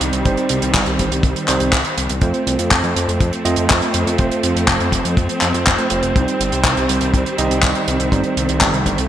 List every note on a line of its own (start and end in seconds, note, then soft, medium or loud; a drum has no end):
0.00 0.12 C2 medium
0.00 2.18 D#3 medium
0.00 0.22 G3 loud
0.00 2.18 G3 medium
0.00 0.22 C4 medium
0.00 2.18 C4 medium
0.00 0.22 D#4 medium
0.00 0.22 D#5 loud
0.00 closed hi-hat loud
0.13 0.24 C2 medium
0.13 closed hi-hat medium
0.25 0.36 G1 loud
0.25 1.45 G3 medium
0.25 1.45 C4 medium
0.25 1.45 D#4 medium
0.25 1.45 C5 loud
0.25 kick loud
0.25 closed hi-hat medium
0.37 closed hi-hat soft
0.49 0.61 C2 medium
0.49 closed hi-hat loud
0.62 0.73 C2 medium
0.62 closed hi-hat medium
0.74 0.85 G1 loud
0.74 kick loud
0.74 clap loud
0.74 closed hi-hat medium
0.86 0.98 C2 medium
0.86 closed hi-hat soft
0.99 1.10 G1 loud
0.99 kick medium
0.99 closed hi-hat loud
1.11 1.22 C2 medium
1.11 closed hi-hat medium
1.23 1.34 C2 loud
1.23 kick loud
1.23 closed hi-hat medium
1.36 closed hi-hat soft
1.48 1.59 C2 loud
1.48 1.75 G3 medium
1.48 1.75 C4 medium
1.48 1.75 D#4 medium
1.48 1.75 C5 loud
1.48 clap medium
1.48 closed hi-hat loud
1.60 1.72 C2 medium
1.60 closed hi-hat medium
1.72 1.84 C2 loud
1.72 kick loud
1.72 clap loud
1.72 closed hi-hat medium
1.85 closed hi-hat soft
1.97 2.08 C2 loud
1.97 closed hi-hat loud
2.09 2.21 C2 medium
2.09 closed hi-hat medium
2.21 2.33 F2 loud
2.21 6.12 F3 medium
2.21 3.42 A3 medium
2.21 6.12 A3 medium
2.21 9.08 C4 medium
2.21 3.42 C4 medium
2.21 3.42 F4 medium
2.21 3.42 C5 loud
2.21 kick loud
2.21 closed hi-hat medium
2.34 closed hi-hat soft
2.47 2.58 C2 medium
2.47 closed hi-hat medium
2.59 2.70 F2 medium
2.59 closed hi-hat medium
2.71 2.82 F2 loud
2.71 kick loud
2.71 clap loud
2.71 closed hi-hat medium
2.84 2.94 F2 medium
2.84 closed hi-hat soft
2.96 3.07 F2 loud
2.96 closed hi-hat medium
3.08 3.19 F2 medium
3.08 closed hi-hat medium
3.20 3.31 F2 loud
3.20 kick loud
3.20 closed hi-hat medium
3.33 closed hi-hat soft
3.45 3.56 F2 medium
3.45 4.16 A3 loud
3.45 4.16 C4 medium
3.45 4.16 F4 medium
3.45 4.16 D#5 loud
3.45 closed hi-hat loud
3.56 3.68 F2 medium
3.56 closed hi-hat medium
3.70 3.81 F2 loud
3.70 kick loud
3.70 clap loud
3.70 closed hi-hat medium
3.82 closed hi-hat soft
3.94 4.05 F2 medium
3.94 closed hi-hat loud
4.07 4.17 F2 medium
4.07 closed hi-hat medium
4.18 4.30 F1 loud
4.18 5.39 A3 medium
4.18 5.39 C4 medium
4.18 5.39 F4 medium
4.18 5.39 C5 loud
4.18 kick loud
4.18 closed hi-hat medium
4.31 closed hi-hat soft
4.43 4.54 F2 medium
4.43 closed hi-hat loud
4.56 4.67 F2 medium
4.56 closed hi-hat medium
4.67 4.79 F1 loud
4.67 kick loud
4.67 clap loud
4.67 closed hi-hat medium
4.80 4.91 F2 medium
4.80 closed hi-hat soft
4.92 5.03 F1 medium
4.92 kick medium
4.92 closed hi-hat loud
5.05 5.16 F2 medium
5.05 closed hi-hat medium
5.17 5.28 F2 loud
5.17 kick loud
5.17 closed hi-hat medium
5.29 closed hi-hat soft
5.41 5.53 F2 medium
5.41 clap medium
5.41 closed hi-hat loud
5.54 5.65 F2 medium
5.54 closed hi-hat medium
5.66 5.78 F1 loud
5.66 kick loud
5.66 clap loud
5.66 closed hi-hat medium
5.78 5.88 A3 medium
5.78 5.88 C4 medium
5.78 5.88 F4 medium
5.78 5.88 C5 medium
5.78 closed hi-hat soft
5.90 6.02 F1 loud
5.90 6.13 A3 medium
5.90 6.13 C4 medium
5.90 6.12 F4 medium
5.90 6.12 C5 medium
5.90 closed hi-hat loud
6.03 6.14 F1 medium
6.03 closed hi-hat medium
6.15 6.27 C2 loud
6.15 9.08 D#3 medium
6.15 8.10 G3 medium
6.15 7.35 G3 medium
6.15 7.35 C4 medium
6.15 7.35 D#4 medium
6.15 7.35 C5 loud
6.15 kick loud
6.15 closed hi-hat medium
6.28 closed hi-hat soft
6.40 6.51 G1 medium
6.40 closed hi-hat medium
6.52 6.63 C2 medium
6.52 closed hi-hat medium
6.64 6.75 C2 loud
6.64 kick loud
6.64 clap loud
6.64 closed hi-hat medium
6.77 6.88 C2 medium
6.77 closed hi-hat soft
6.89 7.00 C2 loud
6.89 closed hi-hat loud
7.01 7.12 C2 medium
7.01 closed hi-hat medium
7.14 7.25 C2 loud
7.14 kick loud
7.14 closed hi-hat medium
7.26 closed hi-hat soft
7.38 7.49 C2 loud
7.38 8.09 G3 loud
7.38 8.09 C4 medium
7.38 8.09 D#4 medium
7.38 8.09 D#5 loud
7.38 closed hi-hat loud
7.51 7.62 C2 medium
7.51 closed hi-hat medium
7.63 7.74 C2 loud
7.63 kick loud
7.63 clap loud
7.63 closed hi-hat medium
7.75 closed hi-hat soft
7.88 7.99 C2 loud
7.88 closed hi-hat loud
8.00 8.11 C2 medium
8.00 closed hi-hat medium
8.12 8.23 G1 loud
8.12 9.08 G3 medium
8.12 9.08 A3 medium
8.12 9.08 C4 medium
8.12 9.08 D#4 medium
8.12 9.08 C5 loud
8.12 kick loud
8.12 closed hi-hat medium
8.24 closed hi-hat soft
8.37 8.48 C2 medium
8.37 closed hi-hat medium
8.49 8.60 C2 medium
8.49 closed hi-hat medium
8.61 8.72 G1 loud
8.61 kick loud
8.61 clap loud
8.61 closed hi-hat medium
8.74 8.85 C2 medium
8.74 closed hi-hat soft
8.86 8.97 G1 loud
8.86 kick medium
8.86 closed hi-hat medium
8.98 9.08 C2 medium
8.98 closed hi-hat medium